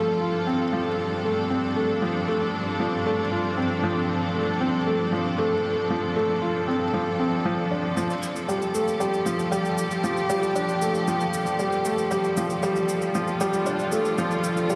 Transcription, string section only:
0.00 7.97 G2 medium
0.00 14.75 F3 medium
0.00 9.01 C4 medium
0.00 1.41 F4 medium
0.00 14.75 A4 medium
0.10 8.61 D4 medium
8.77 13.22 G4 medium
13.07 14.75 F4 medium

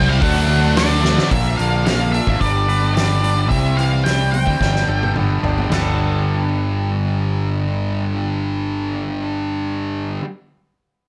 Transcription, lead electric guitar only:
0.09 0.23 F5 medium
0.21 0.72 F#5 medium
0.77 1.31 D5 medium
1.32 1.57 E5 medium
1.57 1.85 F5 medium
1.86 2.12 F5 medium
2.12 2.40 E5 medium
2.41 2.93 D5 medium
2.95 3.49 D5 medium
3.49 3.75 E5 medium
3.77 4.06 F5 medium
4.04 4.31 G5 medium
4.32 5.11 G5 medium

